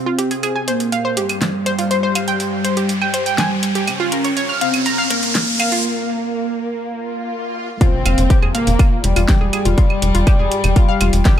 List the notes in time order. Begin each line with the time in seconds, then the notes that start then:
Already playing: C4, riser
0.06 F4
0.18 G4, closed hi-hat
0.31 G#4, closed hi-hat
0.43 G#4, closed hi-hat, claves
0.56 G#5
0.68 A#3 C5, closed hi-hat
0.80 closed hi-hat
0.92 F5, closed hi-hat
1.05 C5
1.17 G3 G4, closed hi-hat
1.29 closed hi-hat, claves
1.42 snare, closed hi-hat
1.66 C5, closed hi-hat
1.79 F4, closed hi-hat
1.91 C5, closed hi-hat
2.03 C5
2.15 F5, closed hi-hat, claves
2.28 G5, closed hi-hat
2.40 closed hi-hat
2.65 C5, closed hi-hat
2.77 G4, closed hi-hat
2.89 closed hi-hat
3.02 G5, claves
3.14 C5, closed hi-hat
3.26 G5, closed hi-hat
3.38 G#5, snare, closed hi-hat
3.63 closed hi-hat
3.75 G4, closed hi-hat
3.87 C#4, closed hi-hat, claves
4.00 F4
4.12 A#4, closed hi-hat
4.24 C#5, closed hi-hat
4.37 C#5, closed hi-hat
4.49 F6
4.61 C4 F5, closed hi-hat
4.74 closed hi-hat, claves
4.86 A#5, closed hi-hat
4.98 F5
5.10 A#3 A#4, closed hi-hat
5.23 closed hi-hat
5.35 snare, closed hi-hat
5.60 F5, closed hi-hat, claves
5.72 F4, closed hi-hat
6.83 swell
7.81 C4 F4, kick, closed hi-hat, impact
8.06 F1 F5, closed hi-hat, claves
8.18 F1, closed hi-hat
8.30 G4, kick, closed hi-hat
8.42 F1 G#4, claves
8.55 A#3 F5, closed hi-hat
8.67 F1, closed hi-hat
8.79 F4, kick, closed hi-hat, claves
9.04 F1 G3, closed hi-hat
9.16 F1 F4, closed hi-hat, claves
9.28 G4, kick, snare, closed hi-hat
9.41 F1 G#4
9.53 G#4, closed hi-hat, claves
9.65 F1 F4, closed hi-hat
9.78 F4, kick, closed hi-hat
9.90 claves
10.02 F1, closed hi-hat
10.15 F1 F4, closed hi-hat
10.27 G4, kick, closed hi-hat, claves
10.39 F1 G#4
10.52 closed hi-hat
10.64 F1, closed hi-hat, claves
10.76 F4, kick, closed hi-hat
10.89 F5
11.01 F1 F4, closed hi-hat, claves
11.13 F1, closed hi-hat
11.25 G4, kick, snare, closed hi-hat